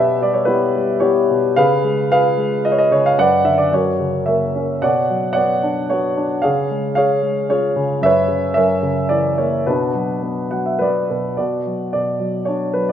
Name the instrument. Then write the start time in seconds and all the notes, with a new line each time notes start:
grand piano
Already playing: B2 G4 B4 E5
0.22 G3 D5
0.34 C#5
0.45 B3 E4 G4 B4
0.75 G3
1.00 B3 E4 G4 C#5
1.30 B2
1.56 C#3 G#4 B4 F5
1.84 G#3
2.11 F4 G#4 B4 F5
2.37 G#3
2.64 F4 D#5
2.72 C#5
2.78 D#5
2.91 C#3 C#5
3.06 F5
3.18 F#2 B4 D5 F#5
3.45 D3 E5
3.58 D5
3.72 F#2 F#4 A#4 C#5
4.00 C#3
4.26 A#3 A#4 C#5 E5
4.56 C#4
4.82 B2 C#5 D5 F#5
5.10 F#3
5.33 B3 C#5 D5 F#5
5.63 D4
5.90 B3 F#4 C#5
6.17 D4
6.42 C#3 G#4 C#5 F5
6.71 G#3
6.95 C#4 G#4 C#5 F5
7.22 G#3
7.49 C#4 F4 G#4 C#5
7.76 C#3
8.01 F#2 E5
8.05 B4 C#5
8.28 C#3
8.54 F#2 A#4 C#5 E5
8.83 C#3
9.09 E3 D5
9.38 A#3 C#5
9.67 B2 D4 F#4 B4
9.95 F#3
10.23 B3
10.51 F#3 F#5
10.66 E5
10.79 B3 B4 D5
11.10 B2 B4
11.37 B2 F#4 D5
11.67 F#3
11.93 B2 D5
12.20 F#3
12.45 D4 C#5
12.74 F#3 B4